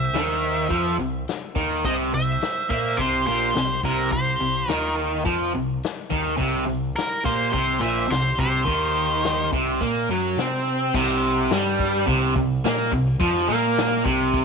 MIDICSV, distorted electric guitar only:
0, 0, Header, 1, 2, 480
1, 0, Start_track
1, 0, Tempo, 568182
1, 1562, Time_signature, 4, 2, 24, 8
1, 12205, End_track
2, 0, Start_track
2, 0, Title_t, "Distorted electric guitar"
2, 0, Program_c, 0, 30
2, 119, Note_on_c, 0, 51, 87
2, 579, Note_off_c, 0, 51, 0
2, 582, Note_on_c, 0, 53, 97
2, 825, Note_off_c, 0, 53, 0
2, 838, Note_on_c, 0, 48, 64
2, 1032, Note_off_c, 0, 48, 0
2, 1313, Note_on_c, 0, 51, 84
2, 1550, Note_off_c, 0, 51, 0
2, 1573, Note_on_c, 0, 48, 101
2, 1796, Note_off_c, 0, 48, 0
2, 1806, Note_on_c, 0, 48, 64
2, 1996, Note_off_c, 0, 48, 0
2, 2280, Note_on_c, 0, 58, 85
2, 2514, Note_off_c, 0, 58, 0
2, 2527, Note_on_c, 0, 48, 90
2, 2757, Note_off_c, 0, 48, 0
2, 2769, Note_on_c, 0, 46, 87
2, 2998, Note_off_c, 0, 46, 0
2, 3004, Note_on_c, 0, 48, 66
2, 3195, Note_off_c, 0, 48, 0
2, 3248, Note_on_c, 0, 48, 89
2, 3466, Note_off_c, 0, 48, 0
2, 3476, Note_on_c, 0, 48, 73
2, 3671, Note_off_c, 0, 48, 0
2, 3720, Note_on_c, 0, 48, 57
2, 3914, Note_off_c, 0, 48, 0
2, 3964, Note_on_c, 0, 51, 93
2, 4429, Note_off_c, 0, 51, 0
2, 4433, Note_on_c, 0, 53, 89
2, 4671, Note_off_c, 0, 53, 0
2, 4685, Note_on_c, 0, 48, 65
2, 4876, Note_off_c, 0, 48, 0
2, 5155, Note_on_c, 0, 51, 96
2, 5380, Note_off_c, 0, 51, 0
2, 5383, Note_on_c, 0, 48, 105
2, 5621, Note_off_c, 0, 48, 0
2, 5631, Note_on_c, 0, 48, 62
2, 5830, Note_off_c, 0, 48, 0
2, 6125, Note_on_c, 0, 58, 82
2, 6352, Note_on_c, 0, 48, 94
2, 6358, Note_off_c, 0, 58, 0
2, 6588, Note_off_c, 0, 48, 0
2, 6591, Note_on_c, 0, 46, 88
2, 6823, Note_off_c, 0, 46, 0
2, 6826, Note_on_c, 0, 48, 63
2, 7028, Note_off_c, 0, 48, 0
2, 7082, Note_on_c, 0, 48, 90
2, 7310, Note_off_c, 0, 48, 0
2, 7313, Note_on_c, 0, 51, 93
2, 8033, Note_off_c, 0, 51, 0
2, 8050, Note_on_c, 0, 48, 83
2, 8281, Note_off_c, 0, 48, 0
2, 8289, Note_on_c, 0, 58, 88
2, 8521, Note_off_c, 0, 58, 0
2, 8536, Note_on_c, 0, 54, 83
2, 8764, Note_off_c, 0, 54, 0
2, 8774, Note_on_c, 0, 60, 99
2, 9243, Note_off_c, 0, 60, 0
2, 9252, Note_on_c, 0, 48, 111
2, 9721, Note_off_c, 0, 48, 0
2, 9736, Note_on_c, 0, 55, 103
2, 10192, Note_on_c, 0, 48, 103
2, 10202, Note_off_c, 0, 55, 0
2, 10431, Note_off_c, 0, 48, 0
2, 10442, Note_on_c, 0, 48, 74
2, 10634, Note_off_c, 0, 48, 0
2, 10688, Note_on_c, 0, 58, 96
2, 10918, Note_off_c, 0, 58, 0
2, 10919, Note_on_c, 0, 48, 69
2, 11112, Note_off_c, 0, 48, 0
2, 11149, Note_on_c, 0, 53, 109
2, 11387, Note_on_c, 0, 58, 97
2, 11388, Note_off_c, 0, 53, 0
2, 11865, Note_off_c, 0, 58, 0
2, 11866, Note_on_c, 0, 48, 94
2, 12205, Note_off_c, 0, 48, 0
2, 12205, End_track
0, 0, End_of_file